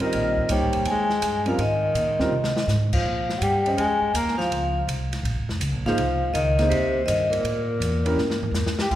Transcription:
0.00 D#3 G3 C4 F4 A#4 D#5, muted upright bass stroke
0.13 A#1, ride
0.37 kick
0.49 C2 G3 A#3 D#4 C5 C#5 G5, hi-hat pedal, ride
0.62 G#1
0.73 D#1, ride
0.84 D#2 G#5, ride
0.91 G#3
1.10 snare
1.22 G2, hi-hat pedal, ride
1.46 F3 G3 C4 F4 A#4 F5, ride
1.58 G#2 D#3 D#5, ride
1.94 A#2, hi-hat pedal, ride
2.07 G#2
2.19 D#2 G3 C4 F4 A#4, snare
2.30 C3
2.44 snare
2.57 snare
2.67 G#2, snare, hi-hat pedal
2.93 F3 F5, kick, crash
3.04 A#2
3.29 snare
3.37 F#3 F#5
3.41 G2 G3 G5, hi-hat pedal, ride
3.66 C#4 G4 C5 D#5, ride
3.77 F2 G#3 G#5, ride
4.01 muted upright bass stroke
4.14 D#2 A#3 A#5, hi-hat pedal, ride
4.28 snare
4.37 F3 F5, snare
4.50 C#2, ride
4.87 C2, hi-hat pedal, ride
5.13 snare, ride
5.23 A#1, ride
5.36 G#1
5.48 F1, snare
5.60 C#2, hi-hat pedal, ride
5.72 A#1
5.84 G#1 F3 A#3 D#4 G#4 F5, snare
5.88 C5
5.96 C2, ride
6.33 C#2 D#3 D#5, hi-hat pedal, ride
6.59 A#3 D#4 G#4 C5, snare, ride
6.68 D#2 C3 C5, ride
7.04 D#3 D#5
7.08 G2, hi-hat pedal, ride
7.29 A#2 A#4, ride
7.44 A2, ride
7.80 E2, hi-hat pedal, ride
8.05 C#4 E4 G4 A#4, ride
8.16 G2, snare
8.30 snare
8.43 floor tom
8.51 E2, snare, hi-hat pedal
8.66 snare
8.79 G4 G5, snare
8.91 D2 F4, kick, crash

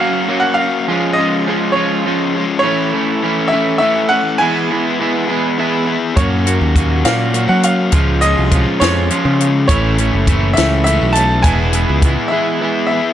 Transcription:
Already playing: A#3 F5
0.00 F#3 A#3 C#4 F#4
0.29 F#3 A#3 C#4 F#4
0.40 F#5
0.54 F5
0.60 C#4 F#4
0.88 F3 G#3 C#4 F4
1.13 D#5
1.17 F3 G#3 C#4 F4
1.46 F3 G#3 C#4 F4
1.72 C#4 F4 C#5
1.76 F3 G#3
2.05 F3 G#3 C#4 F4
2.36 G#3 C#4
2.59 E3 C#5
2.63 A3 C#4 E4
2.68 C#4
2.92 E3 A3 C#4 E4
3.23 E3 A3 C#4 E4
3.48 E5
3.53 E3 A3 C#4 E4
3.78 E3 A3 E5
3.82 C#4 E4
4.09 A3 C#4 F#5
4.38 E3 G#3 B3 E4 G#4 G#5
4.71 E3 G#3 B3 E4 G#4
5.01 E3 G#3 B3 E4 G#4
5.28 E3 G#3 B3 E4 G#4
5.58 E3 G#3 B3 E4 G#4
5.86 B3 E4 G#4
6.16 F#2 F#3 A#3 C#4 F#4 C#5, kick, closed hi-hat
6.47 F#3 A#3 C#4 F#4, closed hi-hat
6.61 D#2
6.76 F#3 A#3 C#4 F#4, kick, closed hi-hat
7.04 A#2 F#3 A#3 C#4 F#4 F5, snare, closed hi-hat
7.33 F#3 A#3 C#4 F#4, closed hi-hat
7.49 F#3 F#5
7.63 C#4 F#4 F5, closed hi-hat
7.92 C#2 F3 G#3 C#4 F4, kick, closed hi-hat
8.21 F3 G#3 C#4 F4 D#5, closed hi-hat
8.38 C2
8.51 F3 G#3 C#4 F4, kick, closed hi-hat
8.80 F2 F3 G#3 C#4 F4 C#5, snare, closed hi-hat
9.10 F3 G#3 C#4 F4, closed hi-hat
9.25 C#3
9.39 G#3 C#4, closed hi-hat
9.68 A1 E3 A3 C#4 E4 C#5, kick, closed hi-hat
9.98 E3 A3 C#4 E4, closed hi-hat
10.13 F#1
10.27 E3 A3 C#4 E4, kick, closed hi-hat
10.54 A3 C#4 E4 E5, closed hi-hat
10.58 C#2 E3, snare
10.84 E3 A3 C#4 E4 E5, closed hi-hat
11.02 B1
11.13 C#4 A5, closed hi-hat
11.19 A3
11.43 E1 E3 G#3 B3 E4 G#5, kick, closed hi-hat
11.48 G#4
11.73 E3 G#3 B3 E4 G#4, closed hi-hat
11.89 C#2
12.02 E3 G#3 B3 E4 G#4, kick, closed hi-hat
12.28 B3 E4 G#4 E5
12.32 E3 G#3
12.61 E3 G#3 B3 E4
12.65 G#4
12.87 E5
12.91 B3 E4 G#4

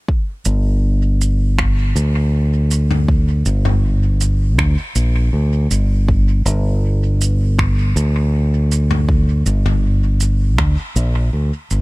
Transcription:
0.09 kick
0.45 G1, shaker
1.21 shaker
1.58 finger snap, kick
1.96 D2, shaker
2.71 shaker
2.90 mid tom
3.08 kick
3.46 G1, shaker
3.65 mid tom
4.21 shaker
4.58 D2, finger snap, kick
4.95 A#1, shaker
5.33 D2
5.71 G1, shaker
6.09 kick
6.46 G1, shaker
7.21 shaker
7.59 finger snap, kick
7.96 D2, shaker
8.72 shaker
8.91 mid tom
9.09 kick
9.46 G1, shaker
9.66 mid tom
10.20 shaker
10.58 D2, finger snap, kick
10.96 A#1, shaker
11.33 D2
11.71 G1, shaker

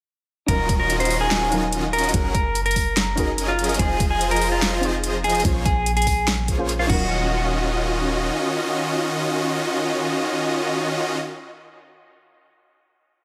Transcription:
0.46 D#1 D#3 F#3 C#4 D#4 F4 F#4 A#4 D#5 F5, kick, closed hi-hat
0.69 kick, closed hi-hat
0.80 A#4
0.90 closed hi-hat
1.00 C5, closed hi-hat
1.05 closed hi-hat
1.10 open hi-hat
1.21 G#4
1.31 snare, closed hi-hat
1.50 D#3 F#3 C#4 D#4 F4 F#4 A#4 D#5 F5, closed hi-hat
1.73 closed hi-hat
1.93 A#4, closed hi-hat
1.98 closed hi-hat
2.04 closed hi-hat
2.09 C#4, closed hi-hat
2.13 F#1 F#3 C#4 D#4 F#4 G#4 A#4, kick, closed hi-hat
2.35 A#4, kick, closed hi-hat
2.55 closed hi-hat
2.66 A#4, closed hi-hat
2.71 closed hi-hat
2.76 kick, open hi-hat
2.97 snare, closed hi-hat
3.15 F#3 C#4 D#4 F#4 G#4 A#4 D#5, kick, closed hi-hat
3.19 A#4
3.38 closed hi-hat
3.48 F4
3.59 closed hi-hat
3.64 closed hi-hat
3.69 closed hi-hat
3.74 C4, closed hi-hat
3.78 F1 F3 D#4 F4 G#4 C5 D#5, kick, closed hi-hat
4.00 kick, closed hi-hat
4.11 G#4
4.21 closed hi-hat
4.31 A#4, closed hi-hat
4.36 closed hi-hat
4.42 open hi-hat
4.52 F4
4.62 snare, closed hi-hat
4.81 F3 C4 D#4 F4 G#4 C5 D#5, closed hi-hat
4.85 C5
5.04 closed hi-hat
5.24 G#4, closed hi-hat
5.30 closed hi-hat
5.35 closed hi-hat
5.40 A#3, closed hi-hat
5.44 A#1 C#4 F4 G#4 C5, kick, closed hi-hat
5.65 G#4, kick, closed hi-hat
5.86 closed hi-hat
5.97 G#4, closed hi-hat
6.02 closed hi-hat
6.07 kick, open hi-hat
6.28 snare, closed hi-hat
6.48 A#3 F4 G#4 C5 C#5, kick, closed hi-hat
6.58 A#3 C#4 F4 G#4 C5
6.69 closed hi-hat
6.79 F4
6.87 D#1 D#3 C#4 D#4 F4 F#4 F5, kick, crash
6.91 F#3 A#4

